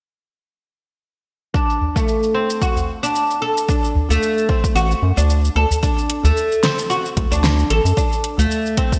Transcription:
1.54 D4, kick, shaker
1.70 shaker
1.81 udu
1.96 A3, kick, shaker
2.08 shaker
2.23 shaker
2.34 C4
2.50 shaker
2.62 F#4, kick, shaker
2.76 udu, shaker
3.03 D4, shaker
3.16 shaker
3.31 shaker
3.42 A4
3.57 shaker
3.68 D4, kick, shaker
3.84 shaker
3.95 udu
4.10 D2 A3, shaker
4.23 shaker
4.38 shaker
4.49 C4, kick
4.64 kick, shaker
4.75 A1 F#4, shaker
4.91 shaker
5.02 F#2
5.17 D2 D4, udu, shaker
5.30 shaker
5.45 shaker
5.56 D2 A4
5.71 udu, shaker
5.83 D4, kick, shaker
5.98 shaker
6.10 closed hi-hat
6.24 D2 A3, udu, shaker
6.37 shaker
6.52 shaker
6.63 C4, snare, closed hi-hat
6.79 shaker
6.90 F#4, shaker
7.06 shaker
7.16 D2, kick, closed hi-hat, udu
7.31 D2 D4, shaker
7.44 snare, shaker
7.59 shaker
7.70 A1 A4, closed hi-hat
7.85 F#2, shaker
7.97 D4, kick, shaker
8.13 shaker
8.24 closed hi-hat
8.38 D2 A3, udu, shaker
8.51 shaker
8.66 shaker
8.77 C4, kick, closed hi-hat
8.92 kick, shaker

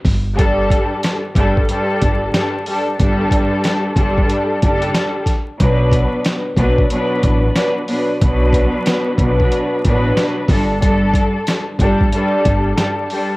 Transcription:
0.05 G1, kick, snare, open hi-hat
0.36 G2 G3 D4 A4, kick, closed hi-hat
0.70 kick, closed hi-hat
1.03 snare, closed hi-hat
1.35 G1 G2 G3 D4 A4, kick, closed hi-hat
1.57 kick
1.69 G2 G3 D4 A4, closed hi-hat
2.01 G1, kick, closed hi-hat
2.33 G2 G3 D4 A4, snare, closed hi-hat
2.66 G2 G3 D4 A4, open hi-hat
2.98 G1 G2 G3 D4 A4, kick, closed hi-hat
3.31 kick, closed hi-hat
3.64 snare, closed hi-hat
3.95 G1 G2 G3 D4 A4, kick, closed hi-hat
4.18 kick
4.30 closed hi-hat
4.62 F#1 G3 D4 A4, kick, closed hi-hat
4.82 closed hi-hat
4.95 snare, closed hi-hat
5.26 kick, snare, closed hi-hat
5.60 B1 B2 F#3 D4 B4, kick, closed hi-hat
5.92 kick, closed hi-hat
6.25 snare, closed hi-hat
6.57 B1 B2 F#3 D4 B4, kick, closed hi-hat
6.79 kick
6.90 B2 F#3 D4 B4, closed hi-hat
7.23 A1, kick, closed hi-hat
7.55 B2 F#3 D4 B4, snare, closed hi-hat
7.87 B2 F#3 D4 B4, open hi-hat
8.21 B1 B2 F#3 D4 B4, kick, closed hi-hat
8.53 kick, closed hi-hat
8.86 snare, closed hi-hat
9.18 B1 B2 F#3 D4 B4, kick, closed hi-hat
9.40 kick
9.52 closed hi-hat
9.84 A1 B2 F#3 D4 B4, kick, closed hi-hat
10.17 snare, closed hi-hat
10.48 G1 G2 G3 D4 A4, kick, snare, open hi-hat
10.79 G2 G3 D4 A4, kick, closed hi-hat
11.14 kick, closed hi-hat
11.47 snare, closed hi-hat
11.79 G1 G2 G3 D4 A4, kick, closed hi-hat
12.01 kick
12.12 G2 G3 D4 A4, closed hi-hat
12.45 G1, kick, closed hi-hat
12.77 G2 G3 D4 A4, snare, closed hi-hat
13.10 G2 G3 D4 A4, open hi-hat

